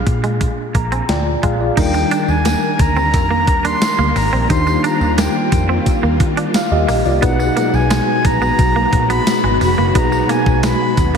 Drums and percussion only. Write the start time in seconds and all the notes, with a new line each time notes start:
0.07 kick, closed hi-hat
0.24 closed hi-hat
0.41 kick, closed hi-hat
0.75 kick, closed hi-hat
0.92 closed hi-hat
1.09 snare, closed hi-hat
1.43 kick, closed hi-hat
1.77 kick, closed hi-hat, crash, tambourine
1.94 tambourine
2.11 closed hi-hat, tambourine
2.28 tambourine
2.45 snare, closed hi-hat, tambourine
2.79 kick, closed hi-hat, tambourine
2.96 tambourine
3.13 kick, closed hi-hat, tambourine
3.47 kick, closed hi-hat
3.65 closed hi-hat, tambourine
3.82 snare, closed hi-hat, tambourine
4.16 open hi-hat, tambourine
4.50 kick, closed hi-hat, tambourine
4.67 tambourine
4.84 closed hi-hat, tambourine
5.01 tambourine
5.18 snare, closed hi-hat, tambourine
5.52 kick, closed hi-hat, tambourine
5.86 kick, closed hi-hat, tambourine
6.20 kick, closed hi-hat
6.37 closed hi-hat
6.54 snare, closed hi-hat, tambourine
6.89 open hi-hat, tambourine
7.05 tambourine
7.22 kick, closed hi-hat, tambourine
7.40 tambourine
7.57 closed hi-hat, tambourine
7.74 tambourine
7.90 snare, closed hi-hat, tambourine
8.24 kick, closed hi-hat, tambourine
8.42 tambourine
8.59 kick, closed hi-hat, tambourine
8.93 kick, closed hi-hat
9.10 closed hi-hat, tambourine
9.27 snare, closed hi-hat, tambourine
9.61 open hi-hat, tambourine
9.95 kick, closed hi-hat, tambourine
10.12 tambourine
10.29 closed hi-hat, tambourine
10.46 kick, tambourine
10.63 snare, closed hi-hat, tambourine
10.97 kick, closed hi-hat, tambourine